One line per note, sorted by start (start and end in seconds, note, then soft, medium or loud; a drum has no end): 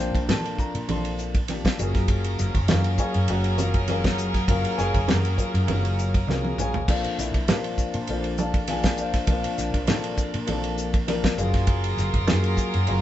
0.00 0.13 A#1 medium
0.00 0.15 F3 medium
0.00 0.16 A#3 medium
0.00 1.74 A#3 medium
0.00 0.16 C4 medium
0.00 0.16 D4 medium
0.00 1.74 D4 medium
0.00 0.16 C5 loud
0.00 0.28 G5 medium
0.15 0.30 A#1 medium
0.15 kick medium
0.15 ride medium
0.28 0.56 A#2 medium
0.28 0.76 F3 medium
0.28 0.76 A#3 medium
0.28 0.76 C4 medium
0.28 0.76 D4 medium
0.28 0.76 A4 medium
0.28 0.58 A5 medium
0.28 snare loud
0.28 ride medium
0.28 high conga medium
0.45 ride medium
0.58 0.88 A#5 loud
0.58 kick medium
0.58 hi-hat pedal medium
0.75 0.87 A#2 medium
0.75 ride medium
0.88 1.74 A#1 loud
0.88 1.36 F3 medium
0.88 1.36 A#3 medium
0.88 1.36 C4 medium
0.88 1.36 D4 medium
0.88 1.36 A4 medium
0.88 1.46 C6 medium
0.88 ride medium
0.88 muted conga soft
0.88 high conga medium
1.05 ride medium
1.18 hi-hat pedal medium
1.34 kick medium
1.34 ride medium
1.48 1.78 F3 medium
1.48 1.78 A#3 medium
1.48 1.79 C4 medium
1.48 1.79 D4 medium
1.48 1.79 G4 medium
1.48 snare soft
1.48 ride medium
1.48 high conga medium
1.65 kick medium
1.65 snare loud
1.65 ride medium
1.78 2.35 F#1 loud
1.78 6.84 F#3 medium
1.78 2.52 F#3 medium
1.78 2.52 A#3 medium
1.78 6.84 C#4 medium
1.78 2.52 C#4 medium
1.78 2.52 F4 medium
1.78 6.84 G#4 medium
1.78 2.52 G#4 loud
1.78 6.84 A#4 medium
1.78 hi-hat pedal medium
1.78 muted conga soft
1.95 kick medium
1.95 snare soft
1.95 ride medium
2.08 kick loud
2.08 ride medium
2.08 muted conga soft
2.24 ride medium
2.38 2.54 F#1 medium
2.38 snare soft
2.38 hi-hat pedal medium
2.38 muted conga soft
2.54 2.70 F#1 loud
2.54 kick medium
2.54 ride medium
2.68 2.96 F#2 medium
2.68 3.16 F#3 medium
2.68 3.16 A#3 medium
2.68 3.16 C#4 medium
2.68 3.16 F4 medium
2.68 2.98 G#4 medium
2.68 2.99 A#4 medium
2.68 2.98 C#5 medium
2.68 2.98 F5 medium
2.68 snare loud
2.68 ride medium
2.68 high conga medium
2.84 ride medium
2.98 3.28 G#4 medium
2.98 3.28 C#5 medium
2.98 3.28 F5 medium
2.98 3.28 G#5 medium
2.98 kick medium
2.98 hi-hat pedal medium
3.14 3.27 F#2 medium
3.14 ride medium
3.28 4.44 F#1 loud
3.28 3.76 F#3 medium
3.28 3.76 A#3 medium
3.28 3.76 C#4 medium
3.28 3.77 F#4 medium
3.28 3.57 A#4 medium
3.28 3.57 C#5 medium
3.28 3.58 F#5 medium
3.28 ride medium
3.28 muted conga soft
3.44 ride medium
3.58 3.88 F4 medium
3.58 3.87 A#4 medium
3.58 3.87 C#5 medium
3.58 3.87 F5 medium
3.58 hi-hat pedal medium
3.58 high conga medium
3.74 kick medium
3.74 ride medium
3.88 4.36 F#3 medium
3.88 4.36 A#3 medium
3.88 4.36 C#4 medium
3.88 4.36 F4 medium
3.88 4.36 A#4 medium
3.88 4.48 C#5 medium
3.88 4.48 F5 medium
3.88 snare soft
3.88 ride medium
3.88 high conga medium
4.04 kick medium
4.04 snare loud
4.04 ride medium
4.18 hi-hat pedal medium
4.18 muted conga soft
4.34 kick medium
4.34 snare soft
4.34 ride medium
4.48 4.63 F#1 loud
4.48 4.96 F#3 medium
4.48 4.96 A#3 medium
4.48 4.96 C#4 medium
4.48 4.96 F4 medium
4.48 4.96 A#4 medium
4.48 4.77 C#5 medium
4.48 4.77 F5 medium
4.48 kick loud
4.48 ride medium
4.48 muted conga soft
4.65 ride medium
4.78 4.93 F#1 medium
4.78 5.07 G#4 medium
4.78 5.07 C#5 medium
4.78 5.07 F5 medium
4.78 5.07 G#5 loud
4.78 snare soft
4.78 hi-hat pedal medium
4.78 muted conga soft
4.94 5.09 F#1 loud
4.94 kick medium
4.94 ride medium
5.08 5.36 F#2 medium
5.08 5.56 F#3 medium
5.08 5.56 A#3 medium
5.08 5.56 C#4 medium
5.08 5.37 F#4 medium
5.08 5.57 G#4 medium
5.08 5.36 A#4 medium
5.08 5.36 C#5 medium
5.08 5.37 F#5 medium
5.08 snare loud
5.08 ride medium
5.08 high conga medium
5.25 ride medium
5.38 5.67 F4 medium
5.38 5.67 A#4 medium
5.38 5.67 C#5 medium
5.38 5.67 F5 medium
5.38 kick medium
5.38 hi-hat pedal medium
5.54 5.67 F#2 medium
5.54 ride medium
5.67 6.24 F#1 loud
5.67 6.15 F#3 medium
5.67 6.15 A#3 medium
5.67 6.16 C#4 medium
5.67 6.16 F4 medium
5.67 6.16 A#4 medium
5.67 6.28 C#5 medium
5.67 6.28 F5 medium
5.67 ride medium
5.67 muted conga soft
5.67 high conga medium
5.85 ride medium
5.98 hi-hat pedal medium
6.14 kick medium
6.14 ride medium
6.27 6.55 C2 medium
6.27 6.76 F#3 medium
6.27 6.76 A#3 medium
6.27 6.76 C#4 medium
6.27 6.76 F4 medium
6.27 6.58 G#4 medium
6.27 6.58 A#4 medium
6.27 6.58 C#5 medium
6.27 6.58 F5 medium
6.27 snare medium
6.27 high conga medium
6.44 high tom medium
6.58 6.85 A#1 medium
6.58 6.88 G#4 medium
6.58 6.88 C#5 medium
6.58 6.88 F5 medium
6.58 6.88 G#5 loud
6.58 hi-hat pedal medium
6.58 mid tom medium
6.58 muted conga soft
6.74 floor tom medium
6.87 7.03 A#1 loud
6.87 7.36 F3 medium
6.87 11.34 A#3 medium
6.87 7.35 A#3 medium
6.87 7.36 C4 medium
6.87 11.33 D4 medium
6.87 7.36 D4 medium
6.87 7.18 F4 medium
6.87 7.36 A4 medium
6.87 7.18 C5 medium
6.87 7.18 D5 medium
6.87 7.18 F5 medium
6.87 kick loud
6.87 crash medium
6.87 ride medium
6.87 muted conga soft
7.04 ride medium
7.18 7.33 A#1 medium
7.18 7.48 E4 medium
7.18 7.47 E5 medium
7.18 snare soft
7.18 hi-hat pedal medium
7.34 7.50 A#1 medium
7.34 kick medium
7.34 ride medium
7.48 7.76 A#2 medium
7.48 7.96 F3 medium
7.48 7.96 A#3 medium
7.48 7.96 C4 medium
7.48 7.96 D4 medium
7.48 8.08 F4 medium
7.48 7.96 A#4 medium
7.48 8.09 C5 medium
7.48 8.09 D5 medium
7.48 8.08 F5 medium
7.48 snare loud
7.48 ride medium
7.48 high conga loud
7.64 ride medium
7.78 kick medium
7.78 hi-hat pedal medium
7.94 8.07 A#2 medium
7.94 ride medium
8.07 9.24 A#1 loud
8.07 8.56 F3 medium
8.07 8.56 A#3 medium
8.07 8.56 C4 medium
8.07 8.56 D4 medium
8.07 8.38 F4 medium
8.07 8.38 A4 medium
8.07 8.38 C5 medium
8.07 8.37 D5 medium
8.07 8.38 F5 medium
8.07 ride medium
8.07 muted conga soft
8.24 ride medium
8.38 8.68 A4 medium
8.38 8.68 D5 medium
8.38 8.68 F5 medium
8.38 8.67 A5 medium
8.38 hi-hat pedal medium
8.38 high conga medium
8.54 kick medium
8.54 ride medium
8.68 9.15 F3 medium
8.68 9.16 A#3 medium
8.68 9.16 C4 medium
8.68 9.15 D4 medium
8.68 8.99 F4 medium
8.68 8.99 G#4 medium
8.68 8.98 G#5 medium
8.68 snare soft
8.68 ride medium
8.68 high conga medium
8.83 kick medium
8.83 snare loud
8.83 ride medium
8.97 9.27 F4 medium
8.97 9.29 C5 medium
8.97 9.29 D5 medium
8.97 9.28 F5 medium
8.97 hi-hat pedal medium
8.97 muted conga soft
9.14 kick medium
9.14 snare soft
9.14 ride medium
9.27 9.43 A#1 loud
9.27 9.75 F3 medium
9.27 9.75 A#3 medium
9.27 9.76 C4 medium
9.27 9.76 D4 medium
9.27 9.76 F4 medium
9.27 10.15 C5 medium
9.27 10.15 D5 medium
9.27 10.15 F5 medium
9.27 kick loud
9.27 ride medium
9.27 muted conga soft
9.44 ride medium
9.58 9.73 A#1 medium
9.58 snare soft
9.58 hi-hat pedal medium
9.58 muted conga soft
9.74 9.89 A#1 medium
9.74 kick medium
9.74 ride medium
9.87 10.16 A#2 medium
9.87 10.35 F3 medium
9.87 10.35 A#3 medium
9.87 10.35 C4 medium
9.87 10.36 D4 medium
9.87 10.36 A4 medium
9.87 snare loud
9.87 ride medium
9.87 high conga medium
10.04 ride medium
10.17 kick medium
10.17 hi-hat pedal medium
10.34 10.47 A#2 medium
10.34 ride medium
10.47 11.34 A#1 loud
10.47 10.95 F3 medium
10.47 10.95 A#3 medium
10.47 10.95 C4 medium
10.47 10.95 D4 medium
10.47 10.95 A4 loud
10.47 ride medium
10.47 muted conga soft
10.47 high conga medium
10.64 ride medium
10.78 hi-hat pedal medium
10.94 kick medium
10.94 ride medium
11.07 11.37 F3 medium
11.07 11.37 A#3 medium
11.07 11.38 C4 medium
11.07 11.38 D4 medium
11.07 11.38 A#4 loud
11.07 snare soft
11.07 ride medium
11.07 high conga medium
11.24 kick medium
11.24 snare loud
11.24 ride medium
11.38 11.94 F#1 loud
11.38 13.01 F#3 medium
11.38 12.11 F#3 medium
11.38 12.11 A#3 medium
11.38 12.11 C#4 medium
11.38 13.01 F4 medium
11.38 12.11 F4 medium
11.38 13.01 G#4 medium
11.38 12.11 G#4 loud
11.38 13.01 A#4 medium
11.38 hi-hat pedal medium
11.54 kick medium
11.54 snare soft
11.54 ride medium
11.67 kick loud
11.67 ride medium
11.67 muted conga soft
11.84 ride medium
11.97 12.13 F#1 medium
11.97 snare soft
11.97 hi-hat pedal medium
11.97 muted conga soft
12.14 12.30 F#1 loud
12.14 kick medium
12.14 ride medium
12.27 12.56 F#2 medium
12.27 12.75 F#3 medium
12.27 12.75 A#3 medium
12.27 12.75 C#4 medium
12.27 12.75 F4 medium
12.27 12.76 G#4 loud
12.27 snare loud
12.27 ride medium
12.27 high conga medium
12.44 ride medium
12.57 kick medium
12.57 hi-hat pedal medium
12.74 12.87 F#2 medium
12.74 ride medium
12.87 13.01 F#1 loud
12.87 13.01 F#3 medium
12.87 13.01 A#3 medium
12.87 13.01 C#4 medium
12.87 13.01 F4 medium
12.87 13.01 G#4 medium
12.87 13.01 A#5 medium
12.87 ride medium
12.87 muted conga soft